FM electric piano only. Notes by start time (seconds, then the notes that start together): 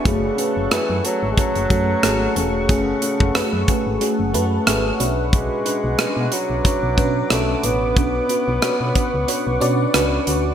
Already playing: D5
0.05 A3 C#4 F#4 G#4
0.38 A3 C#4 F#4 B4
0.71 A3 C#4 F#4 B4
1.04 A3 C#4 F#4 G#4
1.37 A3 C#4 F#4 G#4
1.70 A3 C#4 F#4 A4
2.03 A3 C#4 F#4 G#4
2.36 A3 C#4 F#4 G#4
2.69 A3 C#4 F#4 G#4
3.02 A3 C#4 F#4 G#4
3.35 A3 C#4 F#4 B4
3.68 A3 C#4 F#4 G#4
4.01 A3 C#4 F#4 G#4
4.34 A3 C#4 F#4 B4 A5
4.66 A3 C#4 F#4 G#4 E5
4.99 B2 C#4 D4 F#4 B4
5.65 C#4 D4 F#4 B4
5.98 C#4 D4 F#4 B4
6.31 C#4 D4 F#4 B4
6.64 C#4 D4 F#4 B4
6.97 C#4 D4 F#4 B4
7.30 C#4 D4 F#4 B4
7.63 B2 C#4 D4 F#4 C#5
7.96 C#4 D4 F#4 B4
8.29 C#4 D4 F#4 B4
8.62 C#4 D4 F#4 B4
8.95 C#4 D4 F#4 B4
9.28 C#4 D4 F#4 C#5
9.60 C#4 D4 F#4 D5
9.94 C#4 D4 F#4 B4
10.27 C#4 D4 F#4 B4